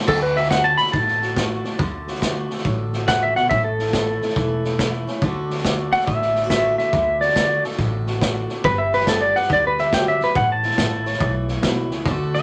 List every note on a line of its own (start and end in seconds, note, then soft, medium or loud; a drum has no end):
0.00 0.79 A4 medium
0.00 snare medium
0.07 0.74 D2 medium
0.07 1.77 D3 medium
0.07 0.22 A4 loud
0.07 kick loud
0.07 snare soft
0.07 crash loud
0.22 0.37 B4 medium
0.36 1.21 F#4 medium
0.36 0.50 E5 medium
0.36 snare soft
0.43 snare soft
0.51 1.35 A3 medium
0.51 0.65 F#5 medium
0.51 kick medium
0.51 snare loud
0.51 hi-hat pedal medium
0.64 0.79 A5 medium
0.77 2.51 A4 medium
0.77 0.92 B5 medium
0.77 snare soft
0.86 snare soft
0.92 1.60 A1 medium
0.92 1.80 A2 medium
0.92 2.18 A5 medium
0.92 kick loud
0.92 snare soft
1.08 snare soft
1.22 1.78 F#4 medium
1.22 snare soft
1.36 2.22 A3 medium
1.36 kick medium
1.36 snare loud
1.36 hi-hat pedal medium
1.65 1.78 D4 medium
1.65 snare soft
1.79 2.46 D2 medium
1.79 3.50 D3 medium
1.79 kick loud
1.79 snare soft
2.07 2.93 F#4 medium
2.07 snare soft
2.15 snare soft
2.22 3.95 A3 medium
2.22 kick medium
2.22 snare loud
2.22 hi-hat pedal medium
2.50 5.25 A4 medium
2.50 snare soft
2.58 snare soft
2.65 3.31 A1 medium
2.65 3.08 A2 medium
2.65 kick medium
2.65 snare soft
2.93 3.50 F#4 medium
2.93 snare soft
3.08 3.36 C#3 medium
3.08 3.22 F#5 medium
3.08 kick medium
3.08 snare loud
3.08 hi-hat pedal medium
3.23 3.36 E5 medium
3.36 3.50 B2 medium
3.36 3.49 F#5 medium
3.36 snare soft
3.49 4.17 A1 medium
3.49 5.22 A2 medium
3.49 3.64 E5 medium
3.49 kick loud
3.49 snare soft
3.64 4.89 A4 medium
3.79 4.22 E4 medium
3.79 snare soft
3.86 snare soft
3.93 4.78 A3 medium
3.93 kick medium
3.93 snare loud
3.93 hi-hat pedal medium
4.21 4.64 E4 medium
4.21 snare soft
4.29 snare soft
4.36 5.02 E1 medium
4.36 5.20 E3 medium
4.36 kick medium
4.36 snare soft
4.64 5.23 E4 medium
4.64 snare soft
4.79 5.23 A3 medium
4.79 kick medium
4.79 snare loud
4.79 hi-hat pedal medium
5.07 5.20 C#4 medium
5.07 snare soft
5.22 5.88 D2 medium
5.22 6.93 D3 medium
5.22 5.66 A3 medium
5.22 6.79 D4 medium
5.22 5.51 F#4 medium
5.22 kick loud
5.22 snare soft
5.26 5.94 A4 medium
5.50 6.36 F#4 medium
5.50 snare soft
5.57 snare soft
5.65 6.50 A3 medium
5.65 kick medium
5.65 snare loud
5.65 hi-hat pedal medium
5.92 7.64 A4 medium
5.92 6.06 F#5 medium
5.92 snare soft
6.00 snare soft
6.07 6.73 A1 medium
6.07 6.93 A2 medium
6.07 6.49 E5 loud
6.07 kick loud
6.07 snare soft
6.22 snare soft
6.35 6.44 E4 medium
6.35 snare soft
6.44 6.94 F#4 medium
6.50 6.92 A3 medium
6.50 6.77 E5 medium
6.50 kick medium
6.50 snare loud
6.50 hi-hat pedal medium
6.78 8.50 D4 medium
6.78 7.20 E5 medium
6.78 snare soft
6.93 7.59 D2 medium
6.93 8.65 D3 medium
6.93 kick loud
6.93 snare soft
7.21 8.06 F#4 medium
7.21 7.63 D5 medium
7.21 snare soft
7.29 snare soft
7.36 8.20 A3 medium
7.36 kick medium
7.36 snare loud
7.36 hi-hat pedal medium
7.64 8.65 A4 medium
7.64 snare soft
7.71 snare soft
7.78 8.44 A1 medium
7.78 8.64 A2 medium
7.78 kick loud
7.78 snare soft
8.06 8.63 F#4 medium
8.06 snare soft
8.22 8.62 A3 medium
8.22 kick medium
8.22 snare loud
8.22 hi-hat pedal medium
8.49 8.63 D4 medium
8.49 snare soft
8.64 9.31 G1 medium
8.64 10.20 G3 medium
8.64 8.78 B4 loud
8.64 kick loud
8.64 snare soft
8.78 8.92 E5 medium
8.92 9.36 B4 medium
8.92 9.07 B4 medium
8.92 snare soft
9.00 snare soft
9.07 10.34 D4 medium
9.07 9.22 A4 medium
9.07 kick medium
9.07 snare loud
9.07 hi-hat pedal medium
9.21 9.35 D5 medium
9.35 10.35 B4 medium
9.35 9.50 F#5 medium
9.35 snare soft
9.42 snare soft
9.50 10.16 D2 medium
9.50 9.93 D3 medium
9.50 9.65 D5 medium
9.50 kick loud
9.50 snare soft
9.67 9.79 B4 medium
9.78 10.35 G4 medium
9.78 9.93 E5 medium
9.78 snare soft
9.93 10.21 F#3 medium
9.93 10.07 G5 loud
9.93 kick medium
9.93 snare loud
9.93 hi-hat pedal medium
10.08 10.21 E5 medium
10.21 10.36 G3 medium
10.21 10.36 B4 medium
10.21 snare soft
10.35 10.68 A1 medium
10.35 11.63 A2 medium
10.35 10.50 F#5 medium
10.35 kick loud
10.35 snare soft
10.52 11.34 A5 medium
10.63 11.48 E4 medium
10.63 snare soft
10.71 snare soft
10.78 11.14 A1 medium
10.78 12.04 A3 medium
10.78 kick medium
10.78 snare loud
10.78 hi-hat pedal medium
11.06 12.05 C#5 medium
11.06 snare soft
11.13 snare soft
11.20 11.57 B1 medium
11.20 12.05 E3 medium
11.20 kick loud
11.20 snare soft
11.48 12.07 E4 medium
11.48 snare soft
11.63 12.00 C#2 medium
11.63 11.91 B2 medium
11.63 kick medium
11.63 snare loud
11.63 hi-hat pedal medium
11.91 12.07 C#3 medium
11.91 snare soft
12.05 12.43 D2 loud
12.05 12.43 D3 medium
12.05 12.43 A3 medium
12.05 12.43 D4 medium
12.05 12.34 F#4 medium
12.05 kick loud
12.05 snare soft
12.10 12.43 A4 medium
12.34 12.43 F#4 medium
12.34 12.43 E5 medium
12.34 snare soft